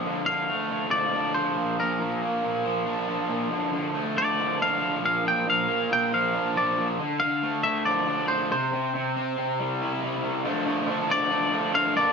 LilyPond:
<<
  \new Staff \with { instrumentName = "Clean electric guitar" } { \time 4/4 \key d \minor \tempo 4 = 138 r8 f''4. d''4 c''4 | bes'4 r2. | r4. d''4 f''4 f''8 | g''8 f''4 g''8 f''4 d''8. r16 |
r8 f''4 e''8 d''4 c''8 c''8~ | c''4 r2. | r4. d''4. f''8 d''8 | }
  \new Staff \with { instrumentName = "Overdriven electric guitar" } { \clef bass \time 4/4 \key d \minor d8 d8 a8 d8 f8 d'8 f8 bes,8 | bes,8 bes,8 bes8 bes,8 f8 d'8 f8 bes,8 | d8 d8 a8 d8 f8 d'8 f8 bes,8 | bes,8 bes,8 bes8 bes,8 f8 d'8 f8 bes,8 |
d8 d8 a8 d8 f8 d'8 f8 c8 | c8 c8 c'8 c8 g8 e'8 g8 c8 | <d f a d'>8 <d f a d'>8 <d f a d'>8 <d f a d'>8 <d f a d'>8 <d f a d'>8 <d f a d'>8 <g, d g bes d'>8 | }
>>